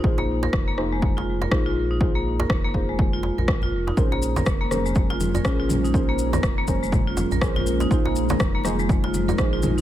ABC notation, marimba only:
X:1
M:4/4
L:1/16
Q:"Swing 16ths" 1/4=122
K:Bbm
V:1 name="Marimba"
z B, z B z B, z A, z F z B z F z E | z B, z B z B, z A, z F z B z F z E | z B, z B z B, z A, z F z B z F z E | z B, z B z B, z A, z F z B z F z E |
z B, z B z B, z A, z F z B z F z E |]